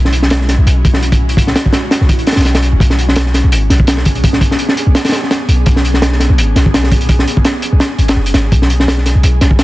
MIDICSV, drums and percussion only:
0, 0, Header, 1, 2, 480
1, 0, Start_track
1, 0, Tempo, 357143
1, 1852, Time_signature, 4, 2, 24, 8
1, 12951, End_track
2, 0, Start_track
2, 0, Title_t, "Drums"
2, 67, Note_on_c, 9, 38, 55
2, 168, Note_on_c, 9, 42, 75
2, 201, Note_off_c, 9, 38, 0
2, 301, Note_on_c, 9, 38, 47
2, 303, Note_off_c, 9, 42, 0
2, 407, Note_on_c, 9, 42, 79
2, 417, Note_off_c, 9, 38, 0
2, 417, Note_on_c, 9, 38, 121
2, 541, Note_off_c, 9, 42, 0
2, 552, Note_off_c, 9, 38, 0
2, 554, Note_on_c, 9, 38, 45
2, 650, Note_off_c, 9, 38, 0
2, 650, Note_on_c, 9, 38, 47
2, 656, Note_on_c, 9, 42, 66
2, 784, Note_off_c, 9, 38, 0
2, 790, Note_off_c, 9, 42, 0
2, 899, Note_on_c, 9, 42, 84
2, 1033, Note_off_c, 9, 42, 0
2, 1139, Note_on_c, 9, 36, 102
2, 1140, Note_on_c, 9, 42, 79
2, 1258, Note_on_c, 9, 38, 54
2, 1274, Note_off_c, 9, 36, 0
2, 1274, Note_off_c, 9, 42, 0
2, 1379, Note_on_c, 9, 42, 66
2, 1392, Note_off_c, 9, 38, 0
2, 1507, Note_off_c, 9, 42, 0
2, 1507, Note_on_c, 9, 42, 80
2, 1508, Note_on_c, 9, 36, 105
2, 1642, Note_off_c, 9, 42, 0
2, 1643, Note_off_c, 9, 36, 0
2, 1735, Note_on_c, 9, 42, 55
2, 1841, Note_on_c, 9, 36, 102
2, 1853, Note_off_c, 9, 42, 0
2, 1853, Note_on_c, 9, 42, 88
2, 1976, Note_off_c, 9, 36, 0
2, 1979, Note_on_c, 9, 38, 50
2, 1987, Note_off_c, 9, 42, 0
2, 2091, Note_off_c, 9, 38, 0
2, 2091, Note_on_c, 9, 38, 103
2, 2091, Note_on_c, 9, 42, 75
2, 2225, Note_off_c, 9, 42, 0
2, 2226, Note_off_c, 9, 38, 0
2, 2227, Note_on_c, 9, 36, 98
2, 2318, Note_on_c, 9, 38, 98
2, 2330, Note_on_c, 9, 42, 73
2, 2362, Note_off_c, 9, 36, 0
2, 2453, Note_off_c, 9, 38, 0
2, 2464, Note_off_c, 9, 42, 0
2, 2567, Note_on_c, 9, 38, 111
2, 2577, Note_on_c, 9, 42, 89
2, 2701, Note_off_c, 9, 38, 0
2, 2703, Note_on_c, 9, 38, 37
2, 2712, Note_off_c, 9, 42, 0
2, 2809, Note_on_c, 9, 36, 107
2, 2811, Note_on_c, 9, 42, 95
2, 2837, Note_off_c, 9, 38, 0
2, 2939, Note_off_c, 9, 42, 0
2, 2939, Note_on_c, 9, 42, 47
2, 2943, Note_off_c, 9, 36, 0
2, 3047, Note_off_c, 9, 42, 0
2, 3047, Note_on_c, 9, 42, 63
2, 3054, Note_on_c, 9, 38, 99
2, 3113, Note_off_c, 9, 42, 0
2, 3113, Note_on_c, 9, 42, 64
2, 3124, Note_off_c, 9, 38, 0
2, 3124, Note_on_c, 9, 38, 94
2, 3171, Note_off_c, 9, 38, 0
2, 3171, Note_on_c, 9, 38, 89
2, 3183, Note_off_c, 9, 42, 0
2, 3183, Note_on_c, 9, 42, 63
2, 3231, Note_off_c, 9, 42, 0
2, 3231, Note_on_c, 9, 42, 70
2, 3240, Note_off_c, 9, 38, 0
2, 3240, Note_on_c, 9, 38, 97
2, 3295, Note_off_c, 9, 38, 0
2, 3295, Note_off_c, 9, 42, 0
2, 3295, Note_on_c, 9, 38, 109
2, 3295, Note_on_c, 9, 42, 77
2, 3423, Note_off_c, 9, 38, 0
2, 3423, Note_on_c, 9, 38, 115
2, 3425, Note_off_c, 9, 42, 0
2, 3425, Note_on_c, 9, 42, 87
2, 3526, Note_off_c, 9, 42, 0
2, 3526, Note_on_c, 9, 42, 73
2, 3557, Note_off_c, 9, 38, 0
2, 3660, Note_off_c, 9, 42, 0
2, 3767, Note_on_c, 9, 36, 107
2, 3780, Note_on_c, 9, 42, 94
2, 3900, Note_on_c, 9, 38, 56
2, 3901, Note_off_c, 9, 36, 0
2, 3914, Note_off_c, 9, 42, 0
2, 4015, Note_on_c, 9, 42, 65
2, 4034, Note_off_c, 9, 38, 0
2, 4147, Note_on_c, 9, 38, 50
2, 4149, Note_off_c, 9, 42, 0
2, 4242, Note_on_c, 9, 42, 86
2, 4253, Note_off_c, 9, 38, 0
2, 4253, Note_on_c, 9, 38, 105
2, 4376, Note_off_c, 9, 42, 0
2, 4384, Note_off_c, 9, 38, 0
2, 4384, Note_on_c, 9, 38, 43
2, 4491, Note_off_c, 9, 38, 0
2, 4491, Note_on_c, 9, 38, 46
2, 4493, Note_on_c, 9, 42, 66
2, 4625, Note_off_c, 9, 38, 0
2, 4627, Note_off_c, 9, 42, 0
2, 4732, Note_on_c, 9, 42, 91
2, 4866, Note_off_c, 9, 42, 0
2, 4972, Note_on_c, 9, 38, 46
2, 4978, Note_on_c, 9, 42, 68
2, 5102, Note_on_c, 9, 36, 99
2, 5107, Note_off_c, 9, 38, 0
2, 5112, Note_off_c, 9, 42, 0
2, 5203, Note_on_c, 9, 42, 93
2, 5212, Note_on_c, 9, 38, 110
2, 5237, Note_off_c, 9, 36, 0
2, 5338, Note_off_c, 9, 42, 0
2, 5339, Note_off_c, 9, 38, 0
2, 5339, Note_on_c, 9, 38, 53
2, 5447, Note_on_c, 9, 42, 68
2, 5456, Note_on_c, 9, 36, 90
2, 5474, Note_off_c, 9, 38, 0
2, 5582, Note_off_c, 9, 42, 0
2, 5582, Note_on_c, 9, 42, 43
2, 5591, Note_off_c, 9, 36, 0
2, 5694, Note_off_c, 9, 42, 0
2, 5694, Note_on_c, 9, 42, 96
2, 5695, Note_on_c, 9, 36, 109
2, 5820, Note_on_c, 9, 38, 53
2, 5829, Note_off_c, 9, 42, 0
2, 5830, Note_off_c, 9, 36, 0
2, 5927, Note_on_c, 9, 36, 92
2, 5932, Note_on_c, 9, 42, 80
2, 5954, Note_off_c, 9, 38, 0
2, 6062, Note_off_c, 9, 36, 0
2, 6066, Note_off_c, 9, 42, 0
2, 6067, Note_on_c, 9, 38, 53
2, 6166, Note_on_c, 9, 42, 58
2, 6201, Note_off_c, 9, 38, 0
2, 6298, Note_on_c, 9, 38, 46
2, 6301, Note_off_c, 9, 42, 0
2, 6414, Note_on_c, 9, 42, 63
2, 6432, Note_off_c, 9, 38, 0
2, 6548, Note_off_c, 9, 42, 0
2, 6651, Note_on_c, 9, 38, 116
2, 6652, Note_on_c, 9, 42, 92
2, 6783, Note_off_c, 9, 38, 0
2, 6783, Note_off_c, 9, 42, 0
2, 6783, Note_on_c, 9, 38, 99
2, 6783, Note_on_c, 9, 42, 74
2, 6832, Note_off_c, 9, 42, 0
2, 6832, Note_on_c, 9, 42, 68
2, 6842, Note_off_c, 9, 38, 0
2, 6842, Note_on_c, 9, 38, 93
2, 6883, Note_off_c, 9, 38, 0
2, 6883, Note_on_c, 9, 38, 115
2, 6890, Note_off_c, 9, 42, 0
2, 6890, Note_on_c, 9, 42, 73
2, 7017, Note_off_c, 9, 38, 0
2, 7024, Note_off_c, 9, 42, 0
2, 7030, Note_on_c, 9, 38, 34
2, 7134, Note_off_c, 9, 38, 0
2, 7134, Note_on_c, 9, 38, 114
2, 7135, Note_on_c, 9, 42, 80
2, 7269, Note_off_c, 9, 38, 0
2, 7270, Note_off_c, 9, 42, 0
2, 7374, Note_on_c, 9, 42, 71
2, 7508, Note_off_c, 9, 42, 0
2, 7606, Note_on_c, 9, 42, 90
2, 7615, Note_on_c, 9, 36, 111
2, 7740, Note_off_c, 9, 42, 0
2, 7745, Note_on_c, 9, 38, 57
2, 7749, Note_off_c, 9, 36, 0
2, 7860, Note_on_c, 9, 42, 68
2, 7879, Note_off_c, 9, 38, 0
2, 7982, Note_on_c, 9, 38, 43
2, 7994, Note_off_c, 9, 42, 0
2, 8091, Note_off_c, 9, 38, 0
2, 8091, Note_on_c, 9, 38, 107
2, 8094, Note_on_c, 9, 42, 88
2, 8225, Note_off_c, 9, 38, 0
2, 8228, Note_off_c, 9, 42, 0
2, 8231, Note_on_c, 9, 38, 45
2, 8331, Note_off_c, 9, 38, 0
2, 8331, Note_on_c, 9, 38, 50
2, 8341, Note_on_c, 9, 42, 63
2, 8465, Note_off_c, 9, 38, 0
2, 8475, Note_off_c, 9, 42, 0
2, 8579, Note_on_c, 9, 42, 94
2, 8714, Note_off_c, 9, 42, 0
2, 8817, Note_on_c, 9, 42, 65
2, 8820, Note_on_c, 9, 38, 53
2, 8951, Note_off_c, 9, 42, 0
2, 8951, Note_on_c, 9, 36, 101
2, 8955, Note_off_c, 9, 38, 0
2, 9061, Note_on_c, 9, 38, 127
2, 9063, Note_on_c, 9, 42, 84
2, 9086, Note_off_c, 9, 36, 0
2, 9187, Note_off_c, 9, 38, 0
2, 9187, Note_on_c, 9, 38, 62
2, 9198, Note_off_c, 9, 42, 0
2, 9294, Note_on_c, 9, 36, 97
2, 9294, Note_on_c, 9, 42, 68
2, 9322, Note_off_c, 9, 38, 0
2, 9419, Note_off_c, 9, 42, 0
2, 9419, Note_on_c, 9, 42, 46
2, 9429, Note_off_c, 9, 36, 0
2, 9526, Note_off_c, 9, 42, 0
2, 9526, Note_on_c, 9, 42, 86
2, 9530, Note_on_c, 9, 36, 113
2, 9660, Note_off_c, 9, 42, 0
2, 9664, Note_on_c, 9, 38, 63
2, 9665, Note_off_c, 9, 36, 0
2, 9778, Note_on_c, 9, 42, 68
2, 9799, Note_off_c, 9, 38, 0
2, 9904, Note_on_c, 9, 36, 96
2, 9912, Note_off_c, 9, 42, 0
2, 10007, Note_on_c, 9, 42, 86
2, 10012, Note_on_c, 9, 38, 123
2, 10038, Note_off_c, 9, 36, 0
2, 10141, Note_off_c, 9, 42, 0
2, 10146, Note_off_c, 9, 38, 0
2, 10245, Note_on_c, 9, 42, 73
2, 10379, Note_off_c, 9, 42, 0
2, 10483, Note_on_c, 9, 38, 123
2, 10493, Note_on_c, 9, 42, 79
2, 10618, Note_off_c, 9, 38, 0
2, 10627, Note_off_c, 9, 42, 0
2, 10733, Note_on_c, 9, 42, 59
2, 10864, Note_off_c, 9, 42, 0
2, 10864, Note_on_c, 9, 42, 75
2, 10875, Note_on_c, 9, 38, 112
2, 10998, Note_off_c, 9, 42, 0
2, 11010, Note_off_c, 9, 38, 0
2, 11102, Note_on_c, 9, 42, 64
2, 11210, Note_on_c, 9, 38, 104
2, 11214, Note_off_c, 9, 42, 0
2, 11214, Note_on_c, 9, 42, 76
2, 11344, Note_off_c, 9, 38, 0
2, 11348, Note_off_c, 9, 42, 0
2, 11450, Note_on_c, 9, 36, 121
2, 11450, Note_on_c, 9, 42, 98
2, 11584, Note_off_c, 9, 42, 0
2, 11585, Note_off_c, 9, 36, 0
2, 11585, Note_on_c, 9, 38, 60
2, 11692, Note_on_c, 9, 42, 65
2, 11720, Note_off_c, 9, 38, 0
2, 11824, Note_on_c, 9, 38, 52
2, 11827, Note_off_c, 9, 42, 0
2, 11936, Note_off_c, 9, 38, 0
2, 11936, Note_on_c, 9, 38, 117
2, 11942, Note_on_c, 9, 42, 89
2, 12067, Note_off_c, 9, 38, 0
2, 12067, Note_on_c, 9, 38, 41
2, 12077, Note_off_c, 9, 42, 0
2, 12173, Note_off_c, 9, 38, 0
2, 12173, Note_on_c, 9, 38, 43
2, 12173, Note_on_c, 9, 42, 67
2, 12307, Note_off_c, 9, 42, 0
2, 12308, Note_off_c, 9, 38, 0
2, 12410, Note_on_c, 9, 42, 92
2, 12544, Note_off_c, 9, 42, 0
2, 12649, Note_on_c, 9, 38, 47
2, 12649, Note_on_c, 9, 42, 71
2, 12778, Note_on_c, 9, 36, 93
2, 12783, Note_off_c, 9, 38, 0
2, 12783, Note_off_c, 9, 42, 0
2, 12887, Note_on_c, 9, 38, 127
2, 12887, Note_on_c, 9, 42, 94
2, 12913, Note_off_c, 9, 36, 0
2, 12951, Note_off_c, 9, 38, 0
2, 12951, Note_off_c, 9, 42, 0
2, 12951, End_track
0, 0, End_of_file